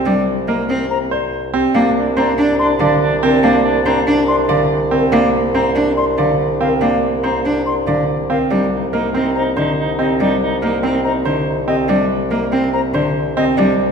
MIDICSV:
0, 0, Header, 1, 7, 480
1, 0, Start_track
1, 0, Key_signature, -3, "minor"
1, 0, Tempo, 422535
1, 67, Time_signature, 4, 2, 24, 8
1, 15811, End_track
2, 0, Start_track
2, 0, Title_t, "Flute"
2, 0, Program_c, 0, 73
2, 1029, Note_on_c, 0, 82, 77
2, 1118, Note_off_c, 0, 82, 0
2, 2944, Note_on_c, 0, 84, 89
2, 3034, Note_off_c, 0, 84, 0
2, 4862, Note_on_c, 0, 84, 88
2, 4953, Note_off_c, 0, 84, 0
2, 6782, Note_on_c, 0, 84, 84
2, 6873, Note_off_c, 0, 84, 0
2, 7505, Note_on_c, 0, 77, 82
2, 7595, Note_off_c, 0, 77, 0
2, 8705, Note_on_c, 0, 84, 73
2, 8795, Note_off_c, 0, 84, 0
2, 9427, Note_on_c, 0, 77, 76
2, 9517, Note_off_c, 0, 77, 0
2, 10625, Note_on_c, 0, 82, 76
2, 10715, Note_off_c, 0, 82, 0
2, 11343, Note_on_c, 0, 75, 76
2, 11434, Note_off_c, 0, 75, 0
2, 12549, Note_on_c, 0, 82, 80
2, 12638, Note_off_c, 0, 82, 0
2, 13262, Note_on_c, 0, 75, 79
2, 13353, Note_off_c, 0, 75, 0
2, 14464, Note_on_c, 0, 82, 81
2, 14554, Note_off_c, 0, 82, 0
2, 15185, Note_on_c, 0, 75, 85
2, 15275, Note_off_c, 0, 75, 0
2, 15811, End_track
3, 0, Start_track
3, 0, Title_t, "Marimba"
3, 0, Program_c, 1, 12
3, 0, Note_on_c, 1, 67, 64
3, 68, Note_on_c, 1, 74, 78
3, 138, Note_off_c, 1, 67, 0
3, 379, Note_off_c, 1, 74, 0
3, 546, Note_on_c, 1, 75, 62
3, 859, Note_off_c, 1, 75, 0
3, 1032, Note_on_c, 1, 72, 67
3, 1273, Note_on_c, 1, 74, 69
3, 1341, Note_off_c, 1, 72, 0
3, 1581, Note_off_c, 1, 74, 0
3, 1749, Note_on_c, 1, 67, 74
3, 1981, Note_on_c, 1, 77, 85
3, 2059, Note_off_c, 1, 67, 0
3, 2297, Note_off_c, 1, 77, 0
3, 2468, Note_on_c, 1, 82, 70
3, 2779, Note_off_c, 1, 82, 0
3, 2946, Note_on_c, 1, 74, 73
3, 3185, Note_on_c, 1, 77, 66
3, 3259, Note_off_c, 1, 74, 0
3, 3498, Note_off_c, 1, 77, 0
3, 3663, Note_on_c, 1, 70, 76
3, 3905, Note_on_c, 1, 77, 88
3, 3977, Note_off_c, 1, 70, 0
3, 4218, Note_off_c, 1, 77, 0
3, 4386, Note_on_c, 1, 82, 72
3, 4699, Note_off_c, 1, 82, 0
3, 4861, Note_on_c, 1, 74, 70
3, 5101, Note_on_c, 1, 77, 70
3, 5177, Note_off_c, 1, 74, 0
3, 5417, Note_off_c, 1, 77, 0
3, 5584, Note_on_c, 1, 70, 70
3, 5818, Note_on_c, 1, 77, 86
3, 5898, Note_off_c, 1, 70, 0
3, 6136, Note_off_c, 1, 77, 0
3, 6300, Note_on_c, 1, 82, 65
3, 6617, Note_off_c, 1, 82, 0
3, 6785, Note_on_c, 1, 74, 71
3, 7025, Note_on_c, 1, 77, 67
3, 7098, Note_off_c, 1, 74, 0
3, 7338, Note_off_c, 1, 77, 0
3, 7508, Note_on_c, 1, 70, 67
3, 7736, Note_on_c, 1, 77, 78
3, 7819, Note_off_c, 1, 70, 0
3, 8055, Note_off_c, 1, 77, 0
3, 8228, Note_on_c, 1, 82, 63
3, 8539, Note_off_c, 1, 82, 0
3, 8705, Note_on_c, 1, 74, 61
3, 8944, Note_on_c, 1, 77, 58
3, 9018, Note_off_c, 1, 74, 0
3, 9258, Note_off_c, 1, 77, 0
3, 9428, Note_on_c, 1, 70, 62
3, 9664, Note_on_c, 1, 74, 75
3, 9739, Note_off_c, 1, 70, 0
3, 9978, Note_off_c, 1, 74, 0
3, 10149, Note_on_c, 1, 75, 59
3, 10460, Note_off_c, 1, 75, 0
3, 10628, Note_on_c, 1, 72, 59
3, 10873, Note_on_c, 1, 74, 60
3, 10939, Note_off_c, 1, 72, 0
3, 11181, Note_off_c, 1, 74, 0
3, 11352, Note_on_c, 1, 67, 57
3, 11592, Note_on_c, 1, 74, 75
3, 11661, Note_off_c, 1, 67, 0
3, 11901, Note_off_c, 1, 74, 0
3, 12073, Note_on_c, 1, 75, 60
3, 12381, Note_off_c, 1, 75, 0
3, 12553, Note_on_c, 1, 72, 65
3, 12797, Note_on_c, 1, 74, 58
3, 12861, Note_off_c, 1, 72, 0
3, 13103, Note_off_c, 1, 74, 0
3, 13276, Note_on_c, 1, 67, 65
3, 13512, Note_on_c, 1, 74, 74
3, 13582, Note_off_c, 1, 67, 0
3, 13821, Note_off_c, 1, 74, 0
3, 13991, Note_on_c, 1, 75, 65
3, 14300, Note_off_c, 1, 75, 0
3, 14469, Note_on_c, 1, 72, 65
3, 14706, Note_on_c, 1, 74, 65
3, 14780, Note_off_c, 1, 72, 0
3, 15019, Note_off_c, 1, 74, 0
3, 15186, Note_on_c, 1, 67, 70
3, 15416, Note_on_c, 1, 74, 79
3, 15498, Note_off_c, 1, 67, 0
3, 15735, Note_off_c, 1, 74, 0
3, 15811, End_track
4, 0, Start_track
4, 0, Title_t, "Soprano saxophone"
4, 0, Program_c, 2, 64
4, 1984, Note_on_c, 2, 62, 39
4, 2153, Note_off_c, 2, 62, 0
4, 2226, Note_on_c, 2, 62, 52
4, 2394, Note_off_c, 2, 62, 0
4, 2465, Note_on_c, 2, 62, 58
4, 2634, Note_off_c, 2, 62, 0
4, 2702, Note_on_c, 2, 62, 67
4, 2872, Note_off_c, 2, 62, 0
4, 2943, Note_on_c, 2, 62, 73
4, 3113, Note_off_c, 2, 62, 0
4, 3191, Note_on_c, 2, 62, 79
4, 3358, Note_off_c, 2, 62, 0
4, 3421, Note_on_c, 2, 62, 83
4, 3591, Note_off_c, 2, 62, 0
4, 3664, Note_on_c, 2, 62, 75
4, 3833, Note_off_c, 2, 62, 0
4, 3898, Note_on_c, 2, 62, 78
4, 4069, Note_off_c, 2, 62, 0
4, 4139, Note_on_c, 2, 62, 80
4, 4310, Note_off_c, 2, 62, 0
4, 4380, Note_on_c, 2, 62, 73
4, 4550, Note_off_c, 2, 62, 0
4, 4623, Note_on_c, 2, 62, 64
4, 4792, Note_off_c, 2, 62, 0
4, 4860, Note_on_c, 2, 62, 61
4, 5030, Note_off_c, 2, 62, 0
4, 5102, Note_on_c, 2, 62, 51
4, 5272, Note_off_c, 2, 62, 0
4, 5338, Note_on_c, 2, 62, 42
4, 5509, Note_off_c, 2, 62, 0
4, 9663, Note_on_c, 2, 63, 35
4, 9832, Note_off_c, 2, 63, 0
4, 9905, Note_on_c, 2, 63, 45
4, 10073, Note_off_c, 2, 63, 0
4, 10153, Note_on_c, 2, 63, 53
4, 10319, Note_off_c, 2, 63, 0
4, 10391, Note_on_c, 2, 63, 58
4, 10558, Note_off_c, 2, 63, 0
4, 10629, Note_on_c, 2, 63, 66
4, 10796, Note_off_c, 2, 63, 0
4, 10864, Note_on_c, 2, 63, 67
4, 11033, Note_off_c, 2, 63, 0
4, 11108, Note_on_c, 2, 63, 70
4, 11276, Note_off_c, 2, 63, 0
4, 11346, Note_on_c, 2, 63, 66
4, 11514, Note_off_c, 2, 63, 0
4, 11589, Note_on_c, 2, 63, 67
4, 11757, Note_off_c, 2, 63, 0
4, 11826, Note_on_c, 2, 63, 72
4, 11995, Note_off_c, 2, 63, 0
4, 12064, Note_on_c, 2, 63, 62
4, 12233, Note_off_c, 2, 63, 0
4, 12313, Note_on_c, 2, 63, 59
4, 12479, Note_off_c, 2, 63, 0
4, 12549, Note_on_c, 2, 63, 52
4, 12716, Note_off_c, 2, 63, 0
4, 12791, Note_on_c, 2, 63, 42
4, 12958, Note_off_c, 2, 63, 0
4, 13028, Note_on_c, 2, 63, 35
4, 13196, Note_off_c, 2, 63, 0
4, 15811, End_track
5, 0, Start_track
5, 0, Title_t, "Grand piano"
5, 0, Program_c, 3, 0
5, 0, Note_on_c, 3, 60, 75
5, 68, Note_on_c, 3, 62, 63
5, 139, Note_off_c, 3, 60, 0
5, 379, Note_off_c, 3, 62, 0
5, 547, Note_on_c, 3, 70, 64
5, 859, Note_off_c, 3, 70, 0
5, 1265, Note_on_c, 3, 72, 69
5, 1578, Note_off_c, 3, 72, 0
5, 1744, Note_on_c, 3, 60, 90
5, 1982, Note_on_c, 3, 62, 68
5, 2058, Note_off_c, 3, 60, 0
5, 2297, Note_off_c, 3, 62, 0
5, 2462, Note_on_c, 3, 72, 63
5, 2777, Note_off_c, 3, 72, 0
5, 3184, Note_on_c, 3, 74, 74
5, 3498, Note_off_c, 3, 74, 0
5, 3668, Note_on_c, 3, 60, 96
5, 3906, Note_on_c, 3, 62, 75
5, 3979, Note_off_c, 3, 60, 0
5, 4219, Note_off_c, 3, 62, 0
5, 4384, Note_on_c, 3, 72, 68
5, 4698, Note_off_c, 3, 72, 0
5, 5100, Note_on_c, 3, 74, 76
5, 5417, Note_off_c, 3, 74, 0
5, 5581, Note_on_c, 3, 60, 84
5, 5820, Note_on_c, 3, 62, 74
5, 5897, Note_off_c, 3, 60, 0
5, 6136, Note_off_c, 3, 62, 0
5, 6302, Note_on_c, 3, 72, 63
5, 6617, Note_off_c, 3, 72, 0
5, 7022, Note_on_c, 3, 74, 64
5, 7337, Note_off_c, 3, 74, 0
5, 7504, Note_on_c, 3, 60, 80
5, 7741, Note_on_c, 3, 62, 64
5, 7818, Note_off_c, 3, 60, 0
5, 8057, Note_off_c, 3, 62, 0
5, 8222, Note_on_c, 3, 72, 60
5, 8537, Note_off_c, 3, 72, 0
5, 8943, Note_on_c, 3, 74, 64
5, 9257, Note_off_c, 3, 74, 0
5, 9426, Note_on_c, 3, 60, 76
5, 9664, Note_on_c, 3, 62, 59
5, 9739, Note_off_c, 3, 60, 0
5, 9978, Note_off_c, 3, 62, 0
5, 10145, Note_on_c, 3, 70, 59
5, 10386, Note_on_c, 3, 60, 61
5, 10458, Note_off_c, 3, 70, 0
5, 10699, Note_off_c, 3, 60, 0
5, 10868, Note_on_c, 3, 72, 65
5, 11179, Note_off_c, 3, 72, 0
5, 11346, Note_on_c, 3, 60, 74
5, 11589, Note_on_c, 3, 62, 57
5, 11659, Note_off_c, 3, 60, 0
5, 11900, Note_off_c, 3, 62, 0
5, 12066, Note_on_c, 3, 70, 58
5, 12305, Note_on_c, 3, 60, 63
5, 12379, Note_off_c, 3, 70, 0
5, 12618, Note_off_c, 3, 60, 0
5, 12785, Note_on_c, 3, 72, 67
5, 13098, Note_off_c, 3, 72, 0
5, 13264, Note_on_c, 3, 60, 77
5, 13506, Note_on_c, 3, 62, 66
5, 13578, Note_off_c, 3, 60, 0
5, 13819, Note_off_c, 3, 62, 0
5, 13985, Note_on_c, 3, 70, 62
5, 14229, Note_on_c, 3, 60, 62
5, 14298, Note_off_c, 3, 70, 0
5, 14540, Note_off_c, 3, 60, 0
5, 14705, Note_on_c, 3, 72, 66
5, 15018, Note_off_c, 3, 72, 0
5, 15187, Note_on_c, 3, 60, 91
5, 15424, Note_on_c, 3, 62, 69
5, 15499, Note_off_c, 3, 60, 0
5, 15738, Note_off_c, 3, 62, 0
5, 15811, End_track
6, 0, Start_track
6, 0, Title_t, "Cello"
6, 0, Program_c, 4, 42
6, 63, Note_on_c, 4, 55, 79
6, 244, Note_off_c, 4, 55, 0
6, 543, Note_on_c, 4, 58, 64
6, 725, Note_off_c, 4, 58, 0
6, 786, Note_on_c, 4, 60, 85
6, 967, Note_off_c, 4, 60, 0
6, 1985, Note_on_c, 4, 58, 81
6, 2166, Note_off_c, 4, 58, 0
6, 2463, Note_on_c, 4, 60, 75
6, 2645, Note_off_c, 4, 60, 0
6, 2703, Note_on_c, 4, 62, 91
6, 2885, Note_off_c, 4, 62, 0
6, 3178, Note_on_c, 4, 50, 75
6, 3361, Note_off_c, 4, 50, 0
6, 3900, Note_on_c, 4, 58, 86
6, 4082, Note_off_c, 4, 58, 0
6, 4381, Note_on_c, 4, 60, 78
6, 4563, Note_off_c, 4, 60, 0
6, 4625, Note_on_c, 4, 62, 88
6, 4806, Note_off_c, 4, 62, 0
6, 5103, Note_on_c, 4, 50, 71
6, 5284, Note_off_c, 4, 50, 0
6, 5817, Note_on_c, 4, 58, 89
6, 6001, Note_off_c, 4, 58, 0
6, 6302, Note_on_c, 4, 60, 77
6, 6484, Note_off_c, 4, 60, 0
6, 6535, Note_on_c, 4, 62, 82
6, 6719, Note_off_c, 4, 62, 0
6, 7019, Note_on_c, 4, 50, 68
6, 7202, Note_off_c, 4, 50, 0
6, 7738, Note_on_c, 4, 58, 79
6, 7921, Note_off_c, 4, 58, 0
6, 8221, Note_on_c, 4, 60, 60
6, 8403, Note_off_c, 4, 60, 0
6, 8464, Note_on_c, 4, 62, 74
6, 8645, Note_off_c, 4, 62, 0
6, 8943, Note_on_c, 4, 50, 66
6, 9124, Note_off_c, 4, 50, 0
6, 9664, Note_on_c, 4, 55, 77
6, 9845, Note_off_c, 4, 55, 0
6, 10149, Note_on_c, 4, 58, 63
6, 10328, Note_off_c, 4, 58, 0
6, 10391, Note_on_c, 4, 60, 70
6, 10569, Note_off_c, 4, 60, 0
6, 10869, Note_on_c, 4, 50, 66
6, 11048, Note_off_c, 4, 50, 0
6, 11590, Note_on_c, 4, 55, 75
6, 11769, Note_off_c, 4, 55, 0
6, 12068, Note_on_c, 4, 58, 64
6, 12247, Note_off_c, 4, 58, 0
6, 12305, Note_on_c, 4, 60, 76
6, 12486, Note_off_c, 4, 60, 0
6, 12787, Note_on_c, 4, 50, 62
6, 12967, Note_off_c, 4, 50, 0
6, 13502, Note_on_c, 4, 55, 80
6, 13684, Note_off_c, 4, 55, 0
6, 13980, Note_on_c, 4, 58, 67
6, 14163, Note_off_c, 4, 58, 0
6, 14223, Note_on_c, 4, 60, 83
6, 14405, Note_off_c, 4, 60, 0
6, 14700, Note_on_c, 4, 50, 67
6, 14883, Note_off_c, 4, 50, 0
6, 15420, Note_on_c, 4, 55, 86
6, 15603, Note_off_c, 4, 55, 0
6, 15811, End_track
7, 0, Start_track
7, 0, Title_t, "Bassoon"
7, 0, Program_c, 5, 70
7, 0, Note_on_c, 5, 36, 52
7, 1844, Note_off_c, 5, 36, 0
7, 1986, Note_on_c, 5, 36, 68
7, 9525, Note_off_c, 5, 36, 0
7, 9667, Note_on_c, 5, 36, 55
7, 15811, Note_off_c, 5, 36, 0
7, 15811, End_track
0, 0, End_of_file